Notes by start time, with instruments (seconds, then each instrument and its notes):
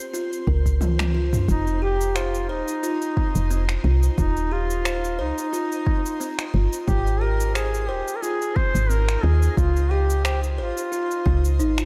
Already playing: synth texture C4 C5, kalimba C5
0.14 kalimba F4, cabasa
0.33 cabasa
0.47 fm bass C#2, kalimba A#4, kick
0.66 kick, cabasa
0.81 kalimba F4, high tom, cabasa
0.99 kalimba C4, finger snap, high tom, cabasa
1.14 kalimba F4
1.33 mid tom, cabasa
1.48 fm bass F1, synth texture D#4 C5, duduk D#4, kalimba F4, kick, cabasa
1.67 cabasa
1.82 kalimba G4, duduk G4
2.01 cabasa
2.16 duduk F4, kalimba C5, finger snap, cabasa
2.35 cabasa
2.49 fm bass D#1, duduk D#4, kalimba C5
2.68 cabasa
2.83 kalimba F4, cabasa
3.02 cabasa
3.17 kalimba C4, kick
3.35 fm bass F1, cabasa
3.50 kalimba C4, cabasa
3.69 finger snap, cabasa
3.84 fm bass C2, kalimba F4
4.03 cabasa
4.18 fm bass D#1, duduk D#4, kalimba F4, kick, cabasa
4.37 cabasa
4.51 duduk F4, kalimba G4
4.70 cabasa
4.85 kalimba C5, finger snap, cabasa
5.04 cabasa
5.19 fm bass C#2, duduk D#4, kalimba C5
5.38 cabasa
5.53 kalimba F4, cabasa
5.72 cabasa
5.86 kalimba C4, kick
6.06 cabasa
6.20 kalimba C4, cabasa
6.39 finger snap, cabasa
6.54 fm bass G1, kalimba F4
6.73 cabasa
6.88 fm bass G#1, kalimba F4, duduk G4, kick, cabasa
7.07 cabasa
7.21 kalimba G4, duduk A#4
7.40 cabasa
7.55 duduk G#4, kalimba C5, finger snap, cabasa
7.74 cabasa
7.89 fm bass D#1, duduk G4, kalimba C5
8.08 cabasa
8.16 duduk A#4
8.22 kalimba F4, duduk G#4, cabasa
8.42 cabasa
8.56 kalimba C4, duduk C5, kick
8.75 fm bass G#1, cabasa
8.90 kalimba C4, duduk A#4, cabasa
9.09 finger snap, cabasa
9.23 fm bass D#2, kalimba F4, duduk G#4
9.43 cabasa
9.57 fm bass C#2, duduk F4, kalimba F4, kick, cabasa
9.76 cabasa
9.91 kalimba G4, duduk G4
10.10 cabasa
10.25 duduk G4, kalimba C5, finger snap, cabasa
10.44 cabasa
10.58 fm bass G#1, duduk F4, kalimba C5
10.78 cabasa
10.92 kalimba F4, cabasa
11.11 cabasa
11.26 fm bass C#2, kalimba F4, kick
11.45 cabasa
11.59 fm bass G#1, kalimba D#4, cabasa
11.78 kalimba F4, finger snap, cabasa